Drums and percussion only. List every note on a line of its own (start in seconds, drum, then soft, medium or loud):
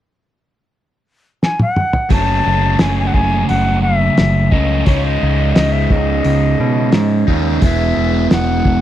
1.43 snare medium
1.59 high tom medium
1.76 mid tom medium
1.93 floor tom medium
2.10 kick loud
2.10 open hi-hat soft
2.79 snare loud
2.79 open hi-hat soft
3.14 kick medium
3.49 open hi-hat soft
4.17 snare medium
4.17 open hi-hat soft
4.52 kick medium
4.86 kick loud
4.86 open hi-hat soft
5.56 snare loud
5.56 open hi-hat soft
5.90 kick medium
6.24 open hi-hat soft
6.92 snare medium
6.92 open hi-hat soft
7.28 kick medium
7.62 kick loud
7.62 open hi-hat soft
8.31 snare loud
8.31 open hi-hat soft
8.65 kick medium